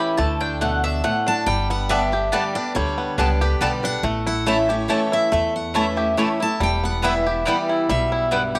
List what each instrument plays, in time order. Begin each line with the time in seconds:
Already playing: steel-string acoustic guitar E3 A3 C#4 E4, five-string banjo E4, mandolin B5
0.00 five-string banjo G4
0.17 upright bass D2, steel-string acoustic guitar D3, five-string banjo A3, mandolin A5
0.41 five-string banjo D4, mandolin G5
0.61 steel-string acoustic guitar B2, five-string banjo A3, mandolin F#5
0.84 five-string banjo D4, mandolin E5
1.04 steel-string acoustic guitar A2, five-string banjo A3, mandolin F#5
1.27 five-string banjo D4, steel-string acoustic guitar A5
1.46 upright bass G1, steel-string acoustic guitar G2 G5, five-string banjo G3
1.70 five-string banjo B3, steel-string acoustic guitar F#5
1.89 steel-string acoustic guitar D3 G3 B3 G4 E5, mandolin B3 G4 D5 A5, five-string banjo D4
2.12 steel-string acoustic guitar B3 G4, five-string banjo G4
2.32 steel-string acoustic guitar D3 G3 B3 G4 D5, five-string banjo G3, mandolin B3 G4 D5 A5
2.55 steel-string acoustic guitar B3 G4 D5, five-string banjo D4
2.75 upright bass D2, steel-string acoustic guitar D3 C#5, five-string banjo G3
2.98 five-string banjo B3
3.18 upright bass C#2, steel-string acoustic guitar D3 G3 B3 G4, mandolin B3 G4 D5 A5, five-string banjo D4
3.41 steel-string acoustic guitar B3 G4 B4, five-string banjo G4
3.61 upright bass B1, steel-string acoustic guitar D3 G3 B3 G4 D5, five-string banjo G3, mandolin B3 G4 D5 A5
3.83 steel-string acoustic guitar B3 G4 F#5, five-string banjo D4
4.03 upright bass A1, steel-string acoustic guitar A2, five-string banjo A3
4.26 five-string banjo E4, steel-string acoustic guitar F#5
4.46 steel-string acoustic guitar E3 A3 C#4 E4 E5, mandolin A3 E4 C#5 A5, five-string banjo A3
4.68 steel-string acoustic guitar C#4 E4 C#5, five-string banjo G4
4.88 steel-string acoustic guitar E3 A3 C#4 E4 C#5, mandolin A3 E4 C#5 A5, five-string banjo A3
5.12 five-string banjo E4, steel-string acoustic guitar E5
5.32 steel-string acoustic guitar E2 E5, upright bass E2, five-string banjo A3
5.56 steel-string acoustic guitar F#5
5.74 steel-string acoustic guitar E3 A3 C#4 E4 E5, mandolin A3 E4 C#5 A5, five-string banjo A3
5.97 steel-string acoustic guitar C#4 E4, five-string banjo G4
6.17 steel-string acoustic guitar E3 A3 C#4 E4, mandolin A3 E4 C#5 A5, five-string banjo A3
6.40 steel-string acoustic guitar C#4 E4 A5, five-string banjo E4
6.60 upright bass E1, steel-string acoustic guitar E2 G5, five-string banjo G3
6.84 five-string banjo B3, steel-string acoustic guitar F#5
7.02 steel-string acoustic guitar E3 G3 B3 E4 E5, mandolin B3 E4 B4 G5, five-string banjo E4
7.26 steel-string acoustic guitar B3 E4, five-string banjo G4
7.45 steel-string acoustic guitar E3 G3 B3 E4 D5, five-string banjo G3, mandolin B3 E4 B4 G5
7.69 five-string banjo E4
7.89 upright bass B1, steel-string acoustic guitar B2 E5, five-string banjo G3
8.12 five-string banjo E4
8.31 steel-string acoustic guitar G2, five-string banjo G3, mandolin B3 E4 B4 G5
8.55 five-string banjo G4, steel-string acoustic guitar F#5